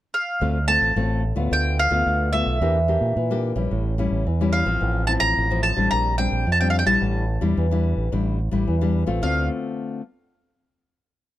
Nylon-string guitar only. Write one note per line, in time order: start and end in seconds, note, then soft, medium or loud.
0.41 0.93 D3 medium
0.41 0.57 A3 medium
0.41 0.58 C4 medium
0.41 0.58 F4 medium
0.68 0.91 A3 medium
0.68 0.92 C4 medium
0.68 0.92 F4 medium
0.96 1.49 A2 medium
0.96 1.22 A3 medium
0.96 1.22 C4 medium
0.96 1.22 F4 medium
1.36 1.87 A3 medium
1.36 1.87 B3 medium
1.36 1.88 F4 medium
1.51 2.03 D3 soft
1.91 2.28 A3 medium
1.91 2.28 B3 medium
1.91 2.29 F4 medium
2.06 2.58 D3 medium
2.33 2.59 A3 medium
2.33 2.59 B3 medium
2.33 2.59 F4 medium
2.61 3.14 E3 medium
2.61 2.77 A#3 medium
2.61 2.78 D4 medium
2.61 2.78 G4 medium
2.88 3.14 A#3 medium
2.88 3.14 D4 medium
2.88 3.15 G4 medium
3.17 3.69 E3 medium
3.31 3.53 A#3 medium
3.31 3.54 D4 medium
3.31 3.54 G4 medium
3.56 3.93 G3 medium
3.56 3.94 C#4 medium
3.56 3.94 E4 medium
3.71 4.23 A2 medium
3.98 4.24 G3 medium
3.98 4.24 C#4 medium
3.98 4.25 E4 medium
4.26 4.79 E3 medium
4.41 4.63 G3 medium
4.41 4.64 C#4 medium
4.41 4.64 E4 medium
4.66 5.04 F3 medium
4.66 5.04 C4 medium
4.81 5.33 A2 medium
5.08 5.45 F3 medium
5.08 5.45 C4 medium
5.08 5.46 E4 medium
5.37 5.89 A2 medium
5.50 5.73 F3 medium
5.50 5.74 C4 medium
5.50 5.74 E4 medium
5.76 6.14 G3 medium
5.76 6.14 C4 medium
5.76 6.14 D4 medium
5.92 6.44 A#2 medium
6.18 6.45 G3 medium
6.18 6.45 C4 medium
6.18 6.45 D4 medium
6.47 6.99 F3 medium
6.61 6.84 G3 medium
6.61 6.84 C4 medium
6.61 6.84 D4 medium
6.86 7.24 G3 medium
6.86 7.24 D4 medium
6.86 7.24 E4 medium
7.02 7.54 A2 medium
7.41 7.65 G3 medium
7.41 7.66 D4 medium
7.41 7.66 E4 medium
7.57 8.10 E3 medium
7.71 8.08 G3 medium
7.71 8.08 D4 medium
7.71 8.08 E4 medium
8.12 8.64 A2 medium
8.12 8.38 G3 medium
8.12 8.38 D4 medium
8.12 8.38 E4 medium
8.51 8.76 G3 medium
8.51 8.76 D4 medium
8.51 8.76 E4 medium
8.67 9.20 E3 medium
8.81 9.04 G3 medium
8.81 9.04 D4 medium
8.81 9.05 E4 medium
9.06 9.22 A3 medium
9.06 9.22 C4 medium
9.06 9.23 F4 medium
9.22 10.01 D3 medium
9.22 10.01 A3 medium
9.22 10.01 C4 medium
9.22 10.01 F4 medium